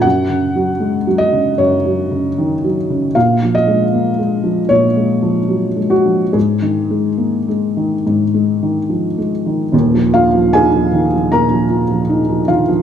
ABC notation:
X:1
M:4/4
L:1/16
Q:1/4=76
K:Ebm
V:1 name="Felt piano"
g6 e2 d6 z2 | f2 e6 d6 G2 | A12- A2 z2 | z2 [Ff]2 [Aa]4 [Bb]6 [Ff]2 |]
V:2 name="Felt piano" clef=bass
(3G,,2 D,2 G,2 (3A,2 G,2 D,2 (3G,,2 G,2 D,2 (3E,2 G,2 D,2 | (3B,,2 F,2 A,2 (3B,2 A,2 F,2 (3B,,2 A,2 F,2 (3G,2 A,2 F,2 | (3A,,2 E,2 A,2 (3B,2 A,2 E,2 (3A,,2 A,2 E,2 (3F,2 A,2 E,2 | [E,,,E,,] F,2 F, E F, E, F, B,, F, F F, E F, E, F, |]